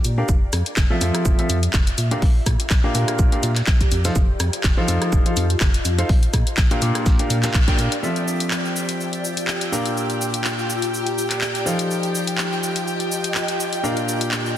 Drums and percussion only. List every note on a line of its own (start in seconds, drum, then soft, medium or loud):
0.04 open hi-hat loud
0.04 shaker medium
0.29 kick loud
0.29 shaker medium
0.53 cross-stick medium
0.53 open hi-hat loud
0.53 shaker medium
0.66 closed hi-hat medium
0.77 kick loud
0.77 snare loud
0.77 clap loud
0.77 shaker medium
1.01 open hi-hat loud
1.01 shaker medium
1.15 cross-stick medium
1.15 closed hi-hat medium
1.25 kick loud
1.25 shaker medium
1.39 closed hi-hat soft
1.50 open hi-hat loud
1.50 shaker medium
1.63 closed hi-hat medium
1.73 kick loud
1.73 snare loud
1.73 clap loud
1.73 shaker medium
1.87 closed hi-hat medium
1.98 open hi-hat loud
1.98 shaker medium
2.11 closed hi-hat medium
2.22 kick loud
2.22 open hi-hat medium
2.46 kick medium
2.46 cross-stick medium
2.46 open hi-hat loud
2.46 shaker medium
2.60 closed hi-hat medium
2.70 kick loud
2.70 snare loud
2.70 clap loud
2.70 shaker medium
2.95 open hi-hat loud
2.95 shaker medium
3.08 cross-stick medium
3.08 closed hi-hat medium
3.19 kick loud
3.19 shaker medium
3.32 closed hi-hat medium
3.43 open hi-hat loud
3.43 shaker medium
3.56 snare medium
3.56 clap soft
3.56 closed hi-hat medium
3.67 kick loud
3.67 snare loud
3.67 clap loud
3.67 shaker medium
3.81 kick medium
3.81 closed hi-hat medium
3.92 open hi-hat loud
3.92 shaker medium
4.05 snare loud
4.05 closed hi-hat medium
4.05 shaker medium
4.16 kick loud
4.16 shaker medium
4.40 cross-stick medium
4.40 open hi-hat loud
4.40 shaker medium
4.53 closed hi-hat medium
4.64 kick loud
4.64 snare loud
4.64 clap loud
4.64 shaker medium
4.88 open hi-hat loud
4.88 shaker medium
5.02 cross-stick medium
5.02 closed hi-hat medium
5.13 kick loud
5.13 shaker medium
5.26 closed hi-hat medium
5.37 open hi-hat loud
5.37 shaker medium
5.50 closed hi-hat medium
5.60 kick loud
5.60 snare loud
5.60 clap loud
5.60 shaker medium
5.74 closed hi-hat medium
5.85 open hi-hat loud
5.85 shaker medium
5.99 closed hi-hat medium
6.09 kick loud
6.09 open hi-hat medium
6.23 closed hi-hat soft
6.34 kick medium
6.34 cross-stick medium
6.34 open hi-hat loud
6.34 shaker medium
6.47 closed hi-hat medium
6.57 kick loud
6.57 snare loud
6.57 clap loud
6.57 shaker medium
6.71 closed hi-hat soft
6.82 open hi-hat loud
6.82 shaker medium
6.95 cross-stick medium
6.95 closed hi-hat medium
7.06 kick loud
7.06 snare loud
7.06 shaker medium
7.19 closed hi-hat medium
7.30 open hi-hat loud
7.30 shaker medium
7.43 snare loud
7.43 clap soft
7.43 closed hi-hat medium
7.43 shaker medium
7.54 kick loud
7.54 clap loud
7.54 shaker medium
7.68 kick medium
7.68 closed hi-hat medium
7.79 open hi-hat loud
7.79 shaker medium
7.92 closed hi-hat medium
8.04 shaker soft
8.16 closed hi-hat soft
8.16 shaker soft
8.28 shaker medium
8.40 closed hi-hat medium
8.40 shaker soft
8.51 clap loud
8.51 shaker soft
8.65 shaker soft
8.76 shaker medium
8.89 closed hi-hat medium
8.89 shaker soft
9.00 shaker soft
9.13 closed hi-hat soft
9.13 shaker soft
9.25 shaker medium
9.37 closed hi-hat medium
9.37 shaker soft
9.47 clap loud
9.47 shaker soft
9.61 closed hi-hat medium
9.61 shaker soft
9.73 shaker medium
9.86 closed hi-hat medium
9.86 shaker soft
9.97 shaker soft
10.10 closed hi-hat soft
10.10 shaker soft
10.21 shaker medium
10.34 closed hi-hat medium
10.34 shaker soft
10.44 clap loud
10.44 shaker soft
10.59 shaker soft
10.70 shaker medium
10.82 closed hi-hat medium
10.82 shaker soft
10.94 shaker soft
11.07 closed hi-hat soft
11.07 shaker soft
11.18 shaker medium
11.30 clap soft
11.30 closed hi-hat medium
11.30 shaker soft
11.41 clap loud
11.41 shaker soft
11.55 closed hi-hat medium
11.55 shaker soft
11.67 shaker medium
11.79 closed hi-hat medium
11.79 shaker soft
11.91 shaker soft
12.03 closed hi-hat soft
12.03 shaker soft
12.15 shaker medium
12.27 closed hi-hat medium
12.27 shaker soft
12.38 clap loud
12.38 shaker soft
12.52 shaker soft
12.63 shaker medium
12.76 closed hi-hat medium
12.76 shaker soft
12.87 shaker soft
13.00 closed hi-hat soft
13.00 shaker soft
13.12 shaker medium
13.24 closed hi-hat medium
13.24 shaker soft
13.35 clap loud
13.35 shaker soft
13.48 closed hi-hat soft
13.48 shaker soft
13.60 shaker medium
13.73 closed hi-hat medium
13.73 shaker soft
13.84 shaker soft
13.97 closed hi-hat soft
13.97 shaker soft
14.08 shaker medium
14.21 closed hi-hat medium
14.21 shaker soft
14.31 clap loud
14.31 shaker soft
14.46 shaker soft